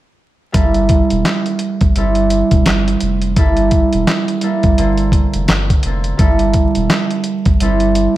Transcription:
0.52 G1 G3 A#3 E4 A4, kick, closed hi-hat
0.74 closed hi-hat
0.89 kick, closed hi-hat
1.10 E1, closed hi-hat
1.25 snare, clap, closed hi-hat
1.46 closed hi-hat
1.59 closed hi-hat
1.81 G1, kick, closed hi-hat
1.96 G1 G3 C4 E4 A4, closed hi-hat
2.15 closed hi-hat
2.30 closed hi-hat
2.51 E1, kick, closed hi-hat
2.66 G1, snare, clap, closed hi-hat
2.88 closed hi-hat
3.00 F1, closed hi-hat
3.22 closed hi-hat
3.36 G1 G3 A#3 E4 A4, kick, closed hi-hat
3.57 closed hi-hat
3.71 kick, closed hi-hat
3.93 E1, closed hi-hat
4.07 snare, clap, closed hi-hat
4.28 closed hi-hat
4.41 G3 A#3 E4 A4, closed hi-hat
4.63 G1, kick, closed hi-hat
4.78 G1 D3 A#3 C4 A4, closed hi-hat
4.98 closed hi-hat
5.12 kick, closed hi-hat
5.34 F1, closed hi-hat
5.48 G1, snare, clap, closed hi-hat
5.70 kick, closed hi-hat
5.83 F1 D3 A#3 C4 A4, closed hi-hat
6.04 closed hi-hat
6.17 G1 G3 A#3 E4 A4, kick, closed hi-hat
6.39 closed hi-hat
6.53 kick, closed hi-hat
6.75 E1, closed hi-hat
6.90 snare, clap, closed hi-hat
7.11 closed hi-hat
7.24 closed hi-hat
7.46 G1, kick, closed hi-hat
7.60 G1 G3 C4 E4 A4, closed hi-hat
7.80 closed hi-hat
7.95 closed hi-hat

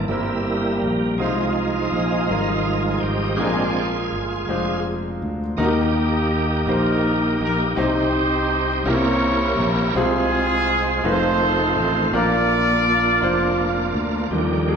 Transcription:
Already playing: C3 G3 C4 E4 A#4 D#5 G5
0.08 G1 G3 A#3 C4 E4 A#4
0.82 A#1
1.18 C2 C3 F3 G3 G#3 D#4 F4 C5
1.25 G#3
1.92 A#1 G#3 F4
2.29 G#1 G3 D#4 F4 A#4
2.35 G#3
2.94 G#4
3.00 G#1 G4
3.35 A#1 G#3 C4 D4 F4 G#4
3.40 A#2 F4 A#4
4.12 G1
4.48 F1 G#3 D4 F4 C5
5.22 D2
5.57 D#2 D#3 A#3 D#4 F#4 A#4
5.61 A#3 G4
5.65 G4
6.67 A#1 D#4 G4 A#4 C5
7.41 A#1 A#4
7.75 C2 C3 C4 D#4 G4 C5
8.85 C2 C3 A#3 C#4 E4 G4 A#4 C#5
8.94 C4
9.59 A#1
9.95 C2 C3 G#3 C4 F4 G#4
9.99 F4 G#4
11.04 F1 D#3 F3 A3 C4 D#4 F4 B4 C5
11.08 D#4 A4
11.12 C5
11.77 A1 C5
12.12 A#1 A#2 A#3 C4 D4 F4 A#4 D5
12.19 D4
13.21 F1 D4 F4 C5
13.94 D2
14.30 D#2 D3 D#3 F3 G3 A#3 D4 G4
14.69 G#4

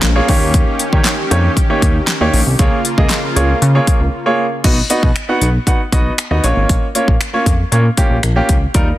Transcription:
Already playing: G#3 A#3 C#4
0.02 A#1, snare, clap, closed hi-hat
0.15 A#3 F4 G#4 C#5
0.28 D#2 D#3 A#3 D#4 G4 C#5, kick, open hi-hat
0.54 kick, closed hi-hat
0.79 closed hi-hat
0.93 D#3 A#3 D#4 G4 C#5, kick
1.04 snare, clap, closed hi-hat
1.31 F2 A#3 D#4 G4 C#5, closed hi-hat
1.57 kick, closed hi-hat
1.70 A#3 D#4 G4 C#5
1.82 D#2, kick, closed hi-hat
2.07 snare, clap, closed hi-hat
2.21 D#2 A#3 D#4 G4 C#5
2.34 A#1, open hi-hat
2.47 C2
2.59 C#2 C#3 A#3 F4 G#4 C#5, kick, closed hi-hat
2.85 closed hi-hat
2.98 C#2 A#3 F4 G#4 D#5, kick
3.09 snare, clap, closed hi-hat
3.36 C#2 A#3 F4 G#4 C#5, closed hi-hat
3.62 C#3, closed hi-hat
3.75 A#3 F4 G#4 C#5
3.87 kick, closed hi-hat
4.00 C#2
4.26 A#3 F4 G#4 C#5
4.64 B1 B3 D#4 F#4 D#5, kick, closed hi-hat, crash
4.90 B3 D#4 F#4 D#5, closed hi-hat
5.03 B2, kick
5.16 finger snap, closed hi-hat
5.29 B3 D#4 F#4 F#5
5.41 B1, closed hi-hat
5.67 B3 D#4 F#4 F#5, kick, closed hi-hat
5.92 B1 B3 D#4 F#4 D#5, kick, closed hi-hat
6.18 finger snap, closed hi-hat
6.31 D#2 B3 D#4 F#4 D#5
6.44 A#1 A#3 C#4 F4 C#5, closed hi-hat
6.57 G#1
6.69 A#1, kick, closed hi-hat
6.95 A#3 C#4 F4 C#5, closed hi-hat
7.08 A#1, kick
7.21 finger snap, closed hi-hat
7.33 A#3 C#4 F4 C#5
7.46 F2, kick, closed hi-hat
7.72 A#2 A#3 C#4 F4 C#5, closed hi-hat
7.97 A#3 C#4 F4 G4, kick, closed hi-hat
8.11 A#1
8.23 A#1, finger snap, closed hi-hat
8.36 A#3 C#4 F4 G4
8.49 C#2, kick, closed hi-hat
8.74 D#2 G3 D#4 F4 A#4, kick, closed hi-hat

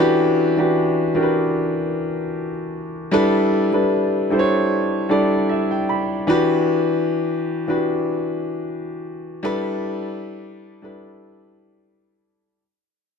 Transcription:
Already playing: E3 C#4 D4 F#4 A4
0.00 G4 B4
0.57 E3 D4 F#4 G4 B4
1.14 E3 D4 F#4 G4 A#4
1.23 B4
3.11 G3 D4 E4 A4 B4
3.72 G3 D4 E4 A4 B4
4.30 G3 D4 E4 A4 C5
4.39 C#5
5.09 G3 D4 E4 A4 D5
5.49 E5
5.71 G5
5.89 B5
6.27 E3 D4 F#4 G4 B4
7.68 E3 D4 F#4 G4 B4
9.43 G3 D4 E4 A4 B4
10.82 G3 D4 E4 A4 B4

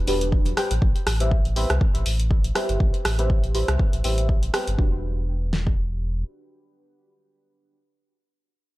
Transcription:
0.07 E1 D4 F#4 G4 B4, open hi-hat, muted conga
0.21 closed hi-hat
0.32 kick
0.45 closed hi-hat, muted conga
0.57 G4 B4 C5 G5, cross-stick, open hi-hat
0.71 A1, closed hi-hat, muted conga
0.82 A1, kick
0.96 closed hi-hat
1.07 A1, cross-stick, open hi-hat
1.20 G4 B4 C5 E5, closed hi-hat
1.31 kick
1.45 closed hi-hat
1.56 G4 B4 C5 E5, open hi-hat
1.70 C2, cross-stick, closed hi-hat
1.81 kick
1.95 A1, closed hi-hat
2.06 A1, open hi-hat
2.20 closed hi-hat
2.31 kick
2.44 closed hi-hat
2.55 G4 B4 C5 E5, cross-stick, open hi-hat
2.69 G1, closed hi-hat
2.80 A1, kick
2.94 closed hi-hat
3.05 A1, cross-stick, open hi-hat
3.18 G4 B4 C5 E5, closed hi-hat
3.30 kick
3.44 closed hi-hat
3.54 G4 B4 C5 E5, open hi-hat
3.68 C2, cross-stick, closed hi-hat
3.79 kick
3.93 A1, closed hi-hat
4.04 A1 G4 B4 C5 E5, open hi-hat
4.18 closed hi-hat
4.29 kick
4.43 closed hi-hat
4.53 G4 B4 C5 G5, cross-stick, open hi-hat
4.67 G1, closed hi-hat
4.77 E1 D4 F#4 G4 B4, kick
5.53 snare
5.67 kick

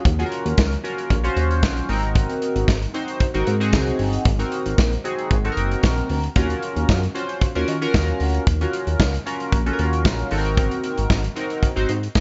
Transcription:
0.05 D#2, kick, closed hi-hat
0.19 C#4 F4 F#4 G#4, closed hi-hat
0.26 A#4
0.32 closed hi-hat
0.45 D#2, closed hi-hat
0.58 C#2, kick, snare, tambourine
0.72 closed hi-hat
0.84 C#4 F4 F#4 A#4, closed hi-hat
0.98 closed hi-hat
1.10 A#1, kick, closed hi-hat
1.23 C#4 F4 F#4 C5, closed hi-hat
1.37 D#2, closed hi-hat
1.51 closed hi-hat
1.63 A#1, kick, snare, tambourine
1.77 closed hi-hat
1.89 G#1 C4 D#4 F#4 A#4, open hi-hat
2.03 closed hi-hat
2.15 kick, closed hi-hat
2.29 closed hi-hat
2.42 closed hi-hat
2.56 G#1, closed hi-hat
2.68 G#1, kick, snare, tambourine
2.82 closed hi-hat
2.94 C4 D#4 F#4 C5, closed hi-hat
3.08 closed hi-hat
3.20 kick, closed hi-hat
3.34 G#1 C4 D#4 F#4 A#4, closed hi-hat
3.47 G#2, closed hi-hat
3.60 C4 D#4 F#4 G#4, closed hi-hat
3.73 C2, kick, snare, tambourine
3.87 closed hi-hat
3.99 G1, open hi-hat
4.13 closed hi-hat
4.25 G#1, kick, closed hi-hat
4.39 C4 D#4 F#4 A#4, closed hi-hat
4.52 closed hi-hat
4.66 G#1, closed hi-hat
4.78 A#1, kick, snare, tambourine
4.93 closed hi-hat
5.04 C4 D#4 F#4 G#4, closed hi-hat
5.18 closed hi-hat
5.31 G#1, kick, closed hi-hat
5.44 C4 D#4 F#4 A4, closed hi-hat
5.52 A#4
5.57 F#1, closed hi-hat
5.71 closed hi-hat
5.83 A#1, kick, snare, tambourine
5.97 closed hi-hat
6.09 D2, open hi-hat
6.23 closed hi-hat
6.36 D#2 C#4 F4 F#4 A#4, kick, closed hi-hat
6.50 closed hi-hat
6.62 closed hi-hat
6.76 D#2, closed hi-hat
6.89 F#2, kick, snare, tambourine
7.03 closed hi-hat
7.14 C#4 F4 F#4 C5, closed hi-hat
7.29 closed hi-hat
7.41 kick, closed hi-hat
7.55 D#2 C#4 F4 F#4 A#4, closed hi-hat
7.68 D#3, closed hi-hat
7.81 C#4 F4 F#4 A#4, closed hi-hat
7.94 D#2, kick, snare, tambourine
8.08 closed hi-hat
8.20 D2, open hi-hat
8.34 closed hi-hat
8.47 D#2, kick, closed hi-hat
8.61 C#4 F4 F#4 A#4, closed hi-hat
8.73 closed hi-hat
8.87 D#2, closed hi-hat
9.00 C#2, kick, snare, tambourine
9.14 closed hi-hat
9.26 C#4 F4 F#4 A#4, closed hi-hat
9.40 closed hi-hat
9.52 A#1, kick, closed hi-hat
9.66 C#4 F4 F#4 A4, closed hi-hat
9.73 A#4
9.79 D#2, closed hi-hat
9.93 closed hi-hat
10.05 A#1, kick, snare, tambourine
10.19 closed hi-hat
10.31 G#1 C4 D#4 F#4 A4, open hi-hat
10.38 A#4
10.45 closed hi-hat
10.57 kick, closed hi-hat
10.71 closed hi-hat
10.84 closed hi-hat
10.97 G#1, closed hi-hat
11.10 G#1, kick, snare, tambourine
11.24 closed hi-hat
11.35 C4 D#4 F#4 A#4, closed hi-hat
11.50 closed hi-hat
11.63 kick, closed hi-hat
11.76 G#1 C4 D#4 F#4 C5, closed hi-hat
11.89 G#2, closed hi-hat
12.03 closed hi-hat
12.15 G#1 D#5 G#5, kick, snare, tambourine

